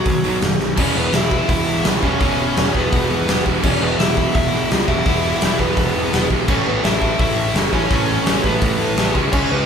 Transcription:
Already playing: F#3 F#4
0.05 B1 B2 D#3 F#3, kick, open hi-hat
0.24 B1 B2 D#3 F#3 B3, open hi-hat
0.42 F#1 B2 D#3 F#3, snare, open hi-hat
0.59 B1 B2 D#3 F#3, snare
0.76 E1 E2 B2 E3 G#3 B3 E4, kick, crash
0.80 C#4 C#5
0.96 E1 B3 B4
1.13 E1 E4 E5, snare, open hi-hat
1.29 E3 G#3 B3 E4, kick
1.49 E1 E4 E5, kick, open hi-hat
1.68 E1
1.84 C#2 E3 G#3 B3, snare, open hi-hat
1.88 E4
2.02 E1 E2 B2 E3 C#4 C#5, kick
2.19 E1 E2 B2 E3 G#3 B3, kick, open hi-hat
2.23 E4
2.57 E1, snare, open hi-hat
2.74 E1 E3 G#3 B3 E4 B4, kick
2.92 E1, kick, open hi-hat
3.10 E2
3.27 E1 E3 G#3 B3 E4, snare, open hi-hat
3.45 E1 E2 B2 E3, kick
3.62 E1 E2 B2 E3 G#3 B3 C#4 C#5, kick, crash
3.66 E3 E4
3.81 E1 B3 B4
3.99 E1 E4 E5, snare, open hi-hat
4.17 E3 G#3 B3 E4, kick
4.35 E1 E4 E5, kick, open hi-hat
4.52 E1
4.69 C#2 E3 G#3 B3, snare, open hi-hat
4.74 E4
4.88 E1 E2 B2 E3 E4 E5, kick
5.05 E1 E2 B2 E3 G#3 B3, kick, open hi-hat
5.10 E4
5.41 E1, snare, open hi-hat
5.59 E1 E3 G#3 B3 E4 B4, kick
5.77 E1, kick, open hi-hat
5.95 E2
6.11 E1 E3 G#3 B3 E4, snare, open hi-hat
6.30 B1 E2 B2 E3, kick
6.46 A1 A2 E3 A3 C#4 E4 C#5, kick, crash
6.51 A3
6.66 A1 B3 B4
6.83 A1 E4 E5, snare, open hi-hat
7.00 A2 E3 A3 C#4 E4, kick
7.19 A1 E4 E5, kick, open hi-hat
7.36 A1
7.54 F#1 A2 E3 A3 C#4 E4, snare, open hi-hat
7.73 A1 A2 E3 A3 C#4 C#5, kick
7.89 A1 A2 E3 A3 C#4 E4, kick, open hi-hat
8.25 A1, snare, open hi-hat
8.44 A1 E3 A3 B3 C#4 E4 B4, kick
8.48 A2
8.62 A1, kick, open hi-hat
8.79 A2
8.96 A1 A2 E3 A3 C#4 E4, snare, open hi-hat
9.13 C#2 C#3 G#3 C#4, kick
9.18 E4
9.32 C#2 C#4 C#5, kick, crash
9.51 C#2 B3 B4

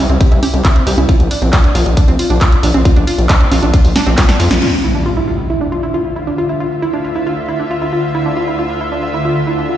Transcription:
0.09 C2 C4, closed hi-hat
0.21 G4, kick, closed hi-hat
0.32 C2 E4, closed hi-hat
0.43 G4, open hi-hat, high conga
0.54 C2, closed hi-hat
0.65 E4, kick, clap, closed hi-hat
0.76 C4, closed hi-hat
0.87 C2 G4, open hi-hat
0.98 C2 E4, closed hi-hat, high conga
1.09 F4, kick, closed hi-hat
1.20 A#1, closed hi-hat
1.31 D4, open hi-hat
1.42 A#1 C4
1.53 F4, kick, clap, closed hi-hat
1.64 D4, closed hi-hat
1.75 A#1 F4, open hi-hat
1.86 A#1, closed hi-hat
1.97 D4, kick, closed hi-hat
2.08 A#1 C4, closed hi-hat
2.19 F4, open hi-hat
2.30 A#1 D4, closed hi-hat
2.41 F4, kick, clap, closed hi-hat
2.52 closed hi-hat
2.63 A#1 D4, open hi-hat
2.74 A#1 C4, closed hi-hat, high conga
2.85 F4, kick, closed hi-hat
2.96 A#1 D4, closed hi-hat
3.07 F4, open hi-hat
3.18 A#1, closed hi-hat
3.29 D4, kick, clap, closed hi-hat
3.40 C4, closed hi-hat
3.51 A#1 F4, open hi-hat, high conga
3.62 A#1 D4, closed hi-hat
3.74 F4, kick, closed hi-hat
3.85 A#1, open hi-hat
3.96 D4, snare, open hi-hat, high conga
4.07 A#1 C4, closed hi-hat
4.18 F4, kick, snare, clap, closed hi-hat
4.29 D4, snare, closed hi-hat
4.40 F2 F4, open hi-hat
4.51 A#1, snare, high conga
4.62 D2 D3 F4 E5, crash, impact
4.84 E4
4.95 D4
5.06 F4
5.17 E4
5.28 F4
5.50 E4
5.61 D4
5.72 F4
5.83 E4
5.94 F4
6.16 E4
6.27 D4
6.38 F4
6.49 E4
6.60 F4
6.82 E4
6.93 D4
7.04 F4
7.16 E4
7.27 F4
7.49 E4
7.60 D4
7.71 F4
7.82 E4
7.93 F4
8.15 E4
8.26 D4
8.37 F4
8.48 E4
8.59 F4
8.81 E4
8.92 D4
9.03 F4
9.14 E4
9.25 F4
9.47 E4
9.58 D4
9.69 F4

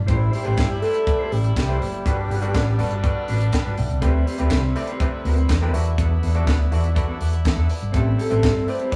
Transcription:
0.06 A1 A3 E4 G4 B4 C5, kick, closed hi-hat
0.11 C3 G3 E4
0.19 muted clean electric guitar stroke
0.30 E4 G4 C5, open hi-hat
0.34 G4
0.44 A1 A3 E4 G4 B4 C5, closed hi-hat
0.56 G1 E4 G4 C5, kick, snare, clap, closed hi-hat
0.69 muted clean electric guitar stroke
0.82 A3 E4 G4 A4 B4 C5, muted clean electric guitar stroke, open hi-hat
0.94 E4 G4 D5, closed hi-hat
1.06 A3 E4 G4 B4 D5, muted clean electric guitar stroke, kick, closed hi-hat
1.19 E4 G4 C5
1.31 A1 G4, muted clean electric guitar stroke, open hi-hat
1.44 muted clean electric guitar stroke, closed hi-hat
1.56 C2 G4, muted clean electric guitar stroke, kick, snare, clap, closed hi-hat
1.68 A3 E4 G4 B4 C5
1.81 F#1 G4, muted clean electric guitar stroke, open hi-hat
1.93 muted clean electric guitar stroke, closed hi-hat
2.05 G1 D3 G3 B3 D4 F#4 A4 B4, kick, closed hi-hat
2.19 muted clean electric guitar stroke
2.30 G1 D4 F#4 B4, open hi-hat
2.42 G3 D4 F#4 A4 B4 D5, closed hi-hat
2.54 A1 D4 F#4 B4, kick, snare, clap, closed hi-hat
2.67 muted clean electric guitar stroke
2.78 G1 G3 D4 F#4 A4 B4, muted clean electric guitar stroke, open hi-hat
2.91 D4 F#4 D5, closed hi-hat
3.03 G3 D4 F#4 A4 B4, muted clean electric guitar stroke, kick, closed hi-hat
3.17 muted clean electric guitar stroke
3.28 A1 D4 F#4 B4, open hi-hat
3.41 muted clean electric guitar stroke, closed hi-hat
3.52 G5 B5, muted clean electric guitar stroke, kick, snare, clap, closed hi-hat
3.65 G1 D4 F#4 B4
3.77 B1 E5 G5, muted clean electric guitar stroke, open hi-hat
3.89 C2, muted clean electric guitar stroke, closed hi-hat
4.01 D2 C3 D3 A3 C4 E4 G4 B4, kick, closed hi-hat
4.14 muted clean electric guitar stroke
4.25 C4 G4 B4, open hi-hat
4.38 D2 D3 A3 C4 E4 G4 B4, closed hi-hat
4.50 C2 C4 G4 B4, kick, snare, clap, closed hi-hat
4.63 muted clean electric guitar stroke
4.75 D3 A3 C4 E4 G4 D5, muted clean electric guitar stroke, open hi-hat
4.87 C4 G4 C5, closed hi-hat
5.00 D3 A3 C4 E4 G4 B4, kick, closed hi-hat
5.13 muted clean electric guitar stroke
5.25 D2 C4 G4 B4, open hi-hat
5.37 muted clean electric guitar stroke, closed hi-hat
5.49 E2, muted clean electric guitar stroke, kick, snare, clap, closed hi-hat
5.61 D3 A3 C4 E4 G4 B4
5.74 E2 D3 E3 A3 E4 F#4 A4 D5, muted clean electric guitar stroke, open hi-hat
5.86 muted clean electric guitar stroke, closed hi-hat
5.98 E2 B3 D4 A4, kick, closed hi-hat
6.10 muted clean electric guitar stroke
6.22 E2 B3 D4 A4, open hi-hat
6.35 E3 B3 D4 E4 F#4 A4 D5, closed hi-hat
6.46 D2 B3 D4 A4, kick, snare, clap, closed hi-hat
6.59 muted clean electric guitar stroke
6.70 E2 E3 E4 F#4 A4 D5, muted clean electric guitar stroke, open hi-hat
6.82 B3 D4 B4, closed hi-hat
6.94 E3 E4 F#4 A4 D5, muted clean electric guitar stroke, kick, closed hi-hat
7.07 B3 D4 A4
7.18 E2 D5 F#5, muted clean electric guitar stroke, open hi-hat
7.31 muted clean electric guitar stroke, closed hi-hat
7.43 E3 E5, muted clean electric guitar stroke, kick, clap, closed hi-hat
7.47 snare
7.56 E2 B3 D4 A4
7.69 B4 D5, muted clean electric guitar stroke, open hi-hat
7.80 G1, muted clean electric guitar stroke, closed hi-hat
7.92 A1 C3 G3 A3 C4 E4 G4 A4, kick, closed hi-hat
7.96 G4 B4 C5
8.04 muted clean electric guitar stroke
8.17 C4 G4 A4, open hi-hat
8.30 A1 A3 C4 E4 G4 A4 B4 C5, closed hi-hat
8.43 G1 C4 G4 A4, kick, snare, clap, closed hi-hat
8.55 muted clean electric guitar stroke
8.67 A3 E4 G4 B4 C5 D5, muted clean electric guitar stroke, open hi-hat
8.79 C4 G4 B4, closed hi-hat
8.91 A3 E4 G4 B4 D5, muted clean electric guitar stroke, kick, closed hi-hat

